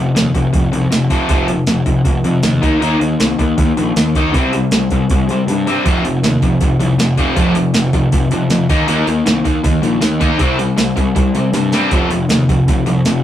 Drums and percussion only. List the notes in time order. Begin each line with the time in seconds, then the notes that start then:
0.16 snare, open hi-hat
0.35 kick, open hi-hat
0.54 kick, open hi-hat
0.73 open hi-hat
0.92 snare, open hi-hat
1.10 kick, open hi-hat
1.29 kick, open hi-hat
1.48 open hi-hat
1.67 snare, open hi-hat
1.86 kick, open hi-hat
2.05 kick, open hi-hat
2.24 open hi-hat
2.43 snare, open hi-hat
2.62 kick, open hi-hat
2.82 open hi-hat
3.01 open hi-hat
3.20 snare, open hi-hat
3.39 kick, open hi-hat
3.58 kick, open hi-hat
3.77 open hi-hat
3.96 snare, open hi-hat
4.15 kick, open hi-hat
4.34 kick, open hi-hat
4.53 open hi-hat
4.71 snare, open hi-hat
4.90 kick, open hi-hat
5.10 kick, open hi-hat
5.29 open hi-hat
5.48 open hi-hat
5.67 open hi-hat
5.85 kick, open hi-hat
6.05 open hi-hat
6.24 snare, open hi-hat
6.42 kick, open hi-hat
6.61 kick, open hi-hat
6.80 open hi-hat
6.99 snare, open hi-hat
7.18 kick, open hi-hat
7.37 kick, open hi-hat
7.55 open hi-hat
7.74 snare, open hi-hat
7.93 kick, open hi-hat
8.12 kick, open hi-hat
8.31 open hi-hat
8.50 snare, open hi-hat
8.69 kick, open hi-hat
8.88 open hi-hat
9.07 open hi-hat
9.26 snare, open hi-hat
9.45 kick, open hi-hat
9.64 kick, open hi-hat
9.83 open hi-hat
10.01 snare, open hi-hat
10.21 kick, open hi-hat
10.39 kick, open hi-hat
10.59 open hi-hat
10.78 snare, open hi-hat
10.97 kick, open hi-hat
11.16 kick, open hi-hat
11.35 open hi-hat
11.53 snare, open hi-hat
11.72 snare, open hi-hat
11.91 kick, open hi-hat
12.10 open hi-hat
12.29 snare, open hi-hat
12.49 kick, open hi-hat
12.68 kick, open hi-hat
12.86 open hi-hat
13.05 snare, open hi-hat